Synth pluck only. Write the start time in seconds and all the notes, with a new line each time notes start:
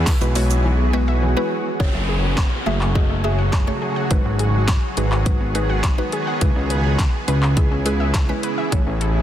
0.21 G#3 B3 E4 F#4 B4
0.36 G#3 B3 E4 F#4 C#5
0.93 G#3 B3 E4 F#4 B4
1.37 G#3 B3 E4 F#4 B4
1.80 A3 F#4 G#4 C#5
2.66 A3 F#4 G#4 E5
2.95 A3 F#4 G#4 D#5
3.24 A3 F#4 G#4 E5
3.67 A3 F#4 G#4 C#5
4.10 G#3 D#4 F#4 B4
4.97 G#3 D#4 F#4 B4
5.26 G#3 D#4 F#4 B4
5.55 G#3 D#4 F#4 B4
5.98 G#3 D#4 F#4 B4
6.41 G#3 C#4 E4 B4
7.28 G#3 C#4 E4 B4
7.57 G#3 C#4 E4 G#4
7.86 G#3 C#4 E4 G#4
8.29 G#3 C#4 E4 B4
8.72 A3 C#4 E4 C#5